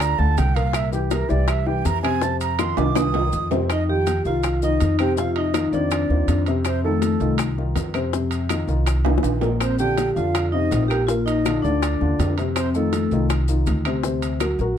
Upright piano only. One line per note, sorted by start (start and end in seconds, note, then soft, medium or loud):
0.00 0.12 D3 medium
0.00 0.13 D4 medium
0.00 0.13 F4 medium
0.18 0.49 D3 medium
0.18 0.49 D4 medium
0.18 0.49 F4 medium
0.56 0.86 A#2 medium
0.56 0.86 A#3 medium
0.56 0.87 A#4 medium
0.92 1.23 E3 medium
0.92 1.23 E4 medium
0.92 1.23 G4 medium
1.29 1.59 E3 medium
1.29 1.60 E4 medium
1.29 1.60 G4 medium
1.66 1.97 E3 medium
1.66 1.97 E4 medium
1.66 1.97 G4 medium
2.03 2.19 C3 medium
2.03 2.19 C4 medium
2.03 2.19 C5 medium
2.21 2.52 C3 medium
2.21 2.52 C4 medium
2.21 2.52 C5 medium
2.59 2.74 D#3 medium
2.59 2.74 D#4 medium
2.59 2.75 F4 medium
2.78 3.08 D#3 medium
2.78 3.08 D#4 medium
2.78 3.08 F4 medium
3.14 3.45 D#3 medium
3.14 3.45 D#4 medium
3.14 3.45 F4 medium
3.51 3.66 C3 medium
3.51 3.66 C4 medium
3.51 3.67 C5 medium
3.89 4.19 D#3 medium
3.89 4.19 D#4 medium
3.89 4.19 F4 medium
4.26 4.56 D#3 medium
4.26 4.56 D#4 medium
4.26 4.56 F4 medium
4.62 4.93 D#3 medium
4.62 4.93 D#4 medium
4.62 4.93 F4 medium
4.99 5.14 C3 medium
4.99 5.14 C4 medium
4.99 5.15 C5 medium
5.17 5.48 C3 medium
5.17 5.48 C4 medium
5.17 5.48 C5 medium
5.55 5.70 D#3 medium
5.55 5.70 D#4 medium
5.55 5.70 F4 medium
5.73 6.04 D#3 medium
5.73 6.04 C4 medium
5.73 6.04 F4 medium
6.10 6.40 D#3 medium
6.10 6.41 C4 medium
6.10 6.41 F4 medium
6.48 6.78 C3 medium
6.48 6.78 C4 medium
6.48 6.78 C5 medium
6.84 7.14 D#3 medium
6.84 7.14 D#4 medium
6.84 7.15 F4 medium
7.20 7.51 D#3 medium
7.20 7.51 D#4 medium
7.20 7.51 F4 medium
7.58 7.88 D#3 medium
7.58 7.88 D#4 medium
7.58 7.89 F4 medium
7.94 8.10 C3 medium
7.94 8.10 C4 medium
7.94 8.10 C5 medium
8.13 8.44 C3 medium
8.13 8.44 C4 medium
8.13 8.44 C5 medium
8.50 8.65 D#3 medium
8.50 8.65 D#4 medium
8.50 8.65 F4 medium
8.68 8.99 D#3 medium
8.68 8.99 D#4 medium
8.68 8.99 F4 medium
9.05 9.36 D#3 medium
9.05 9.36 D#4 medium
9.05 9.36 F4 medium
9.42 9.73 A#2 medium
9.42 9.73 A#3 medium
9.42 9.73 A#4 medium
9.80 10.10 D3 medium
9.80 10.10 D4 medium
9.80 10.10 F4 medium
10.16 10.46 D3 medium
10.16 10.47 D4 medium
10.16 10.47 F4 medium
10.54 10.84 C3 medium
10.54 10.84 C4 medium
10.54 10.84 F4 medium
10.91 11.06 A#2 medium
10.91 11.06 A#3 medium
10.91 11.06 A#4 medium
11.10 11.40 A#2 medium
11.10 11.40 A#3 medium
11.10 11.40 A#4 medium
11.46 11.61 D3 medium
11.46 11.61 D4 medium
11.46 11.62 F4 medium
11.65 11.95 D3 medium
11.65 11.95 D4 medium
11.65 11.95 F4 medium
12.01 12.32 D3 medium
12.01 12.32 D4 medium
12.01 12.32 F4 medium
12.39 12.69 C3 medium
12.39 12.69 C4 medium
12.39 12.69 C5 medium
12.75 13.05 D#3 medium
12.75 13.06 D#4 medium
12.75 13.06 F4 medium
13.12 13.42 D#3 medium
13.12 13.43 D#4 medium
13.12 13.43 F4 medium
13.48 13.79 D#3 medium
13.48 13.79 D#4 medium
13.48 13.79 F4 medium
13.86 14.01 C3 medium
13.86 14.01 C4 medium
13.86 14.01 C5 medium
14.04 14.34 C3 medium
14.04 14.35 C4 medium
14.04 14.35 C5 medium
14.41 14.56 F#3 medium
14.41 14.56 F#4 medium
14.41 14.56 A#4 medium
14.61 14.78 F#3 medium
14.61 14.78 F#4 medium
14.61 14.78 A#4 medium